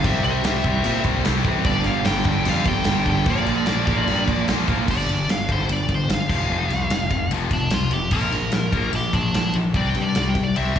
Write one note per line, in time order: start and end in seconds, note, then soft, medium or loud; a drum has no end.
0.04 0.19 C2 medium
0.04 0.23 C3 loud
0.04 0.25 G3 loud
0.04 0.24 C4 loud
0.04 0.26 E4 loud
0.04 0.23 E5 medium
0.04 kick loud
0.04 crash medium
0.24 0.39 C2 medium
0.24 0.43 C3 medium
0.24 0.44 G3 medium
0.24 0.44 C4 medium
0.24 0.45 E4 loud
0.24 1.01 E5 medium
0.24 crash medium
0.44 0.59 C2 medium
0.44 0.63 C3 medium
0.44 0.65 G3 medium
0.44 0.64 C4 medium
0.44 0.65 E4 medium
0.44 snare loud
0.44 crash medium
0.64 0.80 C2 medium
0.64 0.83 C3 loud
0.64 0.84 G3 loud
0.64 0.84 C4 loud
0.64 0.86 E4 loud
0.64 kick medium
0.64 crash medium
0.84 1.00 A#2 medium
0.84 1.03 C3 medium
0.84 1.03 G3 medium
0.84 1.04 C4 medium
0.84 1.05 E4 loud
0.84 crash medium
1.04 1.20 C2 medium
1.04 1.24 C3 medium
1.04 1.25 G3 loud
1.04 1.25 C4 loud
1.04 1.25 E4 loud
1.04 kick medium
1.04 crash medium
1.25 1.40 C2 medium
1.25 1.44 C3 medium
1.25 1.45 G3 medium
1.25 1.46 C4 loud
1.25 1.47 E4 loud
1.25 snare loud
1.25 crash medium
1.44 1.60 A1 loud
1.44 1.65 C3 medium
1.44 1.65 G3 medium
1.44 1.65 C4 medium
1.44 1.66 E4 medium
1.44 kick medium
1.44 crash medium
1.64 1.80 G1 loud
1.64 1.84 G2 medium
1.64 1.85 D3 loud
1.64 1.86 G3 loud
1.64 1.86 A#3 loud
1.64 1.87 D4 loud
1.64 1.85 D5 medium
1.64 kick loud
1.64 crash medium
1.84 2.01 G1 medium
1.84 2.04 G2 medium
1.84 2.05 D3 loud
1.84 2.05 G3 medium
1.84 2.07 A#3 loud
1.84 2.07 D4 loud
1.84 2.05 F5 loud
1.84 crash medium
2.05 2.21 G1 medium
2.05 2.24 G2 medium
2.05 2.25 D3 medium
2.05 2.25 G3 loud
2.05 2.26 A#3 medium
2.05 2.27 D4 medium
2.05 2.47 G5 loud
2.05 snare loud
2.05 crash medium
2.24 2.40 G1 medium
2.24 2.45 G2 loud
2.24 2.45 D3 loud
2.24 2.46 G3 loud
2.24 2.47 A#3 loud
2.24 2.47 D4 loud
2.24 kick medium
2.24 crash medium
2.45 2.61 F2 medium
2.45 2.65 G2 medium
2.45 2.66 D3 medium
2.45 2.66 G3 loud
2.45 2.67 A#3 medium
2.45 2.68 D4 medium
2.45 crash medium
2.49 2.68 F5 loud
2.65 2.81 G1 medium
2.65 2.86 G2 medium
2.65 2.87 D3 loud
2.65 2.87 G3 loud
2.65 2.88 A#3 loud
2.65 2.88 D4 loud
2.65 3.05 G5 loud
2.65 kick medium
2.65 crash medium
2.84 3.02 G1 medium
2.84 3.07 G2 medium
2.84 3.07 A#3 medium
2.84 snare loud
2.84 crash medium
2.88 3.07 D3 medium
2.88 3.08 G3 loud
2.88 3.08 D4 loud
3.06 3.21 G1 medium
3.06 3.26 G2 medium
3.06 3.26 D3 medium
3.06 3.27 G3 medium
3.06 3.27 A#3 loud
3.06 3.28 D4 medium
3.06 kick medium
3.06 crash medium
3.10 3.29 G5 loud
3.26 3.41 A#1 loud
3.26 3.47 A#2 loud
3.26 3.46 D3 medium
3.26 3.47 F3 loud
3.26 3.48 A#3 loud
3.26 3.47 D4 loud
3.26 kick loud
3.26 crash medium
3.30 4.46 D5 medium
3.46 3.62 A#1 medium
3.46 3.66 A#2 medium
3.46 3.67 D3 medium
3.46 3.67 F3 loud
3.46 3.68 A#3 loud
3.46 3.68 D4 medium
3.46 crash medium
3.66 3.83 A#1 medium
3.66 3.87 A#2 medium
3.66 3.87 D3 medium
3.66 3.88 F3 medium
3.66 3.88 A#3 medium
3.66 3.88 D4 medium
3.66 snare loud
3.66 crash medium
3.87 4.02 A#1 medium
3.87 4.07 A#2 loud
3.87 4.07 D3 medium
3.87 4.08 F3 loud
3.87 4.09 A#3 loud
3.87 4.08 D4 loud
3.87 kick medium
3.87 crash medium
4.08 4.23 G2 medium
4.08 4.27 A#2 medium
4.08 4.27 D3 medium
4.08 4.28 F3 medium
4.08 4.29 A#3 medium
4.08 4.28 D4 loud
4.08 crash medium
4.28 4.43 A#1 medium
4.28 4.48 A#2 medium
4.28 4.48 D3 loud
4.28 4.48 F3 medium
4.28 4.49 A#3 loud
4.28 4.50 D4 loud
4.28 kick medium
4.28 crash medium
4.48 4.63 A#1 medium
4.48 4.67 A#2 medium
4.48 4.68 D3 medium
4.48 4.68 F3 loud
4.48 4.68 A#3 medium
4.48 4.70 D4 medium
4.48 snare loud
4.48 crash medium
4.68 4.89 A#1 medium
4.68 4.87 A#2 medium
4.68 4.88 D3 medium
4.68 4.88 F3 medium
4.68 4.88 A#3 medium
4.68 4.89 D4 medium
4.68 kick medium
4.68 crash medium
4.88 5.04 G1 medium
4.88 5.08 G2 medium
4.88 5.08 D3 medium
4.88 5.08 G3 medium
4.88 5.29 D5 medium
4.88 kick loud
4.88 crash loud
5.09 5.25 G1 medium
5.09 5.27 G2 medium
5.09 5.27 D3 medium
5.09 ride medium
5.29 5.45 G1 medium
5.29 5.47 G2 medium
5.29 5.47 D3 medium
5.29 5.50 F5 medium
5.29 snare loud
5.29 ride medium
5.49 5.65 G1 medium
5.49 5.68 G2 medium
5.49 5.69 D3 medium
5.49 5.69 G3 loud
5.49 5.70 C5 medium
5.49 kick medium
5.49 ride medium
5.69 5.85 G1 medium
5.69 5.88 G2 medium
5.69 5.88 D3 medium
5.69 5.91 D5 medium
5.69 ride medium
5.89 6.05 G1 medium
5.89 6.08 G2 medium
5.89 6.08 D3 medium
5.89 kick medium
5.89 ride medium
5.95 6.12 C5 medium
6.09 6.25 G1 medium
6.09 6.28 G2 medium
6.09 6.28 D3 medium
6.09 snare loud
6.09 ride medium
6.14 7.30 F5 medium
6.29 6.46 F1 medium
6.29 6.48 F2 medium
6.29 6.48 C3 medium
6.29 6.49 F3 medium
6.29 kick loud
6.29 crash medium
6.49 6.66 F1 medium
6.49 6.69 F2 medium
6.49 6.69 C3 medium
6.49 6.69 F3 loud
6.70 6.86 C2 medium
6.70 6.88 F2 medium
6.70 6.89 C3 medium
6.70 snare soft
6.70 ride medium
6.90 7.06 F1 medium
6.90 7.09 F2 medium
6.90 7.09 C3 medium
6.90 snare loud
6.90 ride medium
7.11 7.27 F1 medium
7.11 7.29 F2 medium
7.11 7.29 C3 medium
7.11 kick medium
7.11 ride medium
7.31 7.47 F1 medium
7.31 7.50 F2 medium
7.31 7.51 C3 medium
7.31 7.51 F3 medium
7.31 ride medium
7.51 7.67 F1 medium
7.51 7.70 F2 medium
7.51 7.70 C3 medium
7.51 7.72 D4 medium
7.51 kick medium
7.51 ride medium
7.70 7.88 C2 medium
7.70 7.90 F2 medium
7.70 7.90 C3 medium
7.70 7.93 F4 medium
7.70 snare loud
7.70 ride medium
7.91 8.07 F1 medium
7.91 8.10 F2 medium
7.91 8.10 C3 medium
7.91 8.13 G4 medium
7.91 ride medium
8.11 8.28 A#1 medium
8.11 8.31 A#2 medium
8.11 8.32 F3 medium
8.11 8.32 A#3 medium
8.11 8.91 A#4 medium
8.11 kick loud
8.11 crash medium
8.32 8.48 A#1 medium
8.32 8.51 A#2 medium
8.32 8.51 F3 medium
8.32 snare soft
8.32 ride medium
8.52 8.69 A#1 medium
8.52 8.71 A#2 medium
8.52 8.71 F3 medium
8.52 snare loud
8.52 ride medium
8.72 8.89 A#1 medium
8.72 8.91 A#2 medium
8.72 8.92 F3 medium
8.72 8.93 A#3 loud
8.72 kick medium
8.72 ride medium
8.93 9.09 A#1 medium
8.93 9.11 A#2 medium
8.93 9.12 F3 medium
8.93 9.15 G4 medium
8.93 ride medium
9.13 9.29 A#1 medium
9.13 9.32 A#2 medium
9.13 9.32 F3 medium
9.13 9.34 D4 medium
9.13 kick medium
9.13 ride medium
9.33 9.49 A#1 medium
9.33 9.53 A#2 medium
9.33 9.53 F3 medium
9.33 9.55 D4 medium
9.33 snare loud
9.33 ride medium
9.53 9.71 A#1 medium
9.53 9.73 A#2 medium
9.53 9.74 F3 medium
9.53 ride medium
9.74 9.90 C2 medium
9.74 9.94 C3 medium
9.74 9.95 G3 medium
9.74 9.95 C4 medium
9.74 9.89 D5 loud
9.74 kick loud
9.74 ride medium
9.89 10.02 G5 medium
9.95 10.11 G2 medium
9.95 10.14 C3 medium
9.95 10.14 G3 medium
9.95 ride medium
10.02 10.15 D5 medium
10.15 10.32 C2 medium
10.15 10.35 C3 medium
10.15 10.35 G3 medium
10.15 10.30 D5 medium
10.15 snare loud
10.15 ride medium
10.29 10.42 G5 medium
10.35 10.51 C2 medium
10.35 10.54 C3 medium
10.35 10.55 G3 medium
10.35 kick medium
10.35 ride medium
10.43 10.56 D5 medium
10.56 10.73 C2 medium
10.56 10.75 C3 medium
10.56 10.75 G3 medium
10.56 10.76 C4 loud
10.56 10.76 E5 loud
10.56 ride medium
10.76 10.79 C2 medium
10.76 kick medium
10.76 ride medium